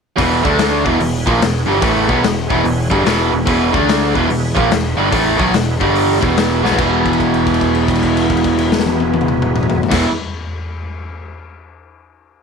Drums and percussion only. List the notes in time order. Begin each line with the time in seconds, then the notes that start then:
0.18 kick, open hi-hat
0.45 kick
0.58 snare, open hi-hat
0.86 kick
1.00 open hi-hat
1.27 kick
1.42 snare, open hi-hat
1.82 kick, open hi-hat
2.09 kick
2.24 snare, open hi-hat
2.50 kick
2.65 open hi-hat
2.91 kick
3.06 snare, open hi-hat
3.47 kick, open hi-hat
3.74 kick
3.89 snare, open hi-hat
4.15 kick
4.30 open hi-hat
4.57 kick
4.71 snare, open hi-hat
5.12 kick, open hi-hat
5.39 kick
5.53 snare, open hi-hat
5.81 kick
5.95 open hi-hat
6.23 kick
6.37 snare, open hi-hat
6.65 snare
6.71 floor tom
6.79 kick, crash
7.06 kick, crash
7.13 crash
7.20 kick, crash
7.34 crash
7.46 kick, crash
7.54 crash
7.61 kick, crash
7.75 crash
7.88 kick, crash
7.95 crash
8.03 kick, crash
8.17 crash
8.30 kick, crash
8.37 crash
8.44 kick, crash
8.58 crash
8.72 snare
8.79 snare
8.86 high tom
9.00 high tom
9.14 high tom
9.21 mid tom
9.28 mid tom
9.42 mid tom
9.56 mid tom
9.63 mid tom
9.70 floor tom
9.83 floor tom
9.91 kick, snare, crash